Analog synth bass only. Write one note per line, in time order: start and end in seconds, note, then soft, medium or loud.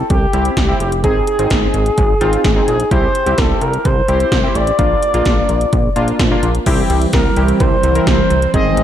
0.10 0.27 C2 loud
0.34 0.50 C2 loud
0.57 0.73 C2 loud
0.80 1.05 F1 medium
1.04 1.20 G#1 loud
1.39 1.47 G#1 medium
1.51 1.67 G#1 loud
1.74 1.91 G#1 medium
1.98 2.14 G#1 loud
2.21 2.37 G#1 loud
2.44 2.61 G#1 loud
2.68 2.84 A#1 medium
2.91 3.08 C2 loud
3.26 3.35 C2 loud
3.38 3.55 C2 medium
3.62 3.78 C2 medium
3.85 4.02 C2 loud
4.08 4.25 C2 loud
4.32 4.48 C2 loud
4.55 4.72 A1 medium
4.79 4.95 A#1 loud
5.14 5.22 A#1 loud
5.26 5.42 A#1 medium
5.49 5.66 A#1 medium
5.73 5.89 A#1 loud
5.96 6.12 A#1 medium
6.19 6.36 A#1 loud
6.43 6.59 A#1 medium
6.66 6.83 C2 loud
6.90 7.06 C2 loud
7.13 7.30 C2 loud
7.37 7.53 C2 medium
7.60 7.77 C2 loud
7.84 8.00 C2 loud
8.07 8.23 C2 loud
8.30 8.47 C2 medium
8.54 8.70 G#1 loud
8.77 8.83 G#1 medium